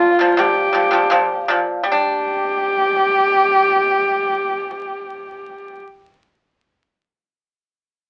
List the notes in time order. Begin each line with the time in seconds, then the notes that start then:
Already playing: F4
0.19 A#2 F3
0.37 A#2 F3 G4
0.73 A#2 F3
0.91 A#2 F3
1.10 A#2 F3
1.48 A#2 F3
1.83 G3 G4
1.92 D4